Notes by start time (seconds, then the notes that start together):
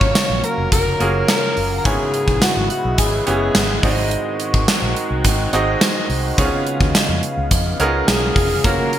Already playing: C#3 F#3 A#3 C#4 F4 F#4 C#5 F5 C#6
0.01 G#1, kick
0.15 snare, closed hi-hat, tambourine
0.30 A#1
0.44 A#4 A#5, closed hi-hat
0.58 F1
0.72 F1 A#4 A#5, kick, closed hi-hat
1.00 F#1 A#3 C#4 F4 F#4 G#4, closed hi-hat
1.28 A#4 A#5, snare, closed hi-hat, tambourine
1.57 F#1, open hi-hat
1.78 A#4 A#5
1.85 G#1 G#2 G#3 B3 C#4 E4 G#4 C#5 G#5, kick, closed hi-hat
2.14 closed hi-hat
2.28 A#1, kick
2.42 F#4 F#5, snare, closed hi-hat, tambourine
2.57 G#1
2.70 F#4 F#5, closed hi-hat
2.85 B1
2.98 G#1 G#4 G#5, kick, closed hi-hat
3.26 F#1 B3 C#4 E4 G#4 C#5 G#5, closed hi-hat
3.55 G#1, snare, closed hi-hat, tambourine
3.83 G#1 G#2 D#3 C4 D#4 F#4 G#4 D5, kick, open hi-hat
3.91 D#5
4.11 closed hi-hat
4.40 closed hi-hat
4.54 G#1, kick
4.68 snare, closed hi-hat, tambourine
4.82 A#1
4.96 closed hi-hat
5.11 C2
5.25 G#1, kick, closed hi-hat
5.53 G#1 C4 D#4 F#4 G#4 D#5, closed hi-hat
5.81 snare, closed hi-hat, tambourine
6.10 C2, open hi-hat
6.38 C#2 C#3 B3 C#4 D#4 G#4 C#5 F5, kick, closed hi-hat
6.44 F4
6.67 closed hi-hat
6.81 D#2, kick
6.95 snare, closed hi-hat, tambourine
7.09 F2
7.23 closed hi-hat
7.37 C#2
7.51 F2, kick, closed hi-hat
7.80 C#2 B3 C#4 D#4 G#4 A#4, closed hi-hat
7.86 F4
8.07 B1 G#4 G#5, snare, closed hi-hat, tambourine
8.36 F1, kick, open hi-hat
8.64 F#1 F#3 A#3 C#4 F4 F#4 A#4 C#5 A#5, kick, closed hi-hat
8.79 A#3 F#4 A#4
8.93 closed hi-hat